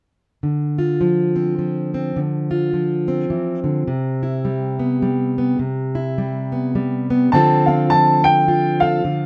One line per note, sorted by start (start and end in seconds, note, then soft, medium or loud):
0.43 2.13 D3 medium
0.79 2.13 F4 soft
1.01 1.57 F3 soft
1.36 1.94 C4 soft
1.59 2.72 F3 medium
1.94 2.19 C4 soft
2.16 3.30 D3 medium
2.51 3.86 F4 soft
2.73 3.88 F3 soft
3.08 4.79 C4 soft
3.30 3.63 E3 medium
3.64 3.87 D3 soft
3.88 5.58 C3 medium
4.23 5.58 E4 soft
4.45 5.01 G3 medium
4.79 5.37 B3 soft
5.02 5.57 G3 medium
5.38 5.58 B3 soft
5.59 7.32 C3 medium
5.95 7.30 E4 medium
6.18 6.74 G3 medium
6.52 7.09 B3 soft
6.75 7.29 G3 medium
7.10 7.30 B3 soft
7.32 9.02 D3 medium
7.32 7.90 F3 medium
7.32 7.68 C4 medium
7.32 8.47 F4 medium
7.32 7.67 A5 medium
7.36 8.81 A4 medium
7.66 8.24 C4 soft
7.66 7.90 F5 medium
7.90 9.26 F3 medium
7.90 8.25 A5 medium
8.24 9.08 C4 soft
8.24 8.83 G5 medium
8.48 9.02 F4 medium
8.80 9.02 A4 medium
8.80 9.26 F5 medium
9.05 9.26 D3 medium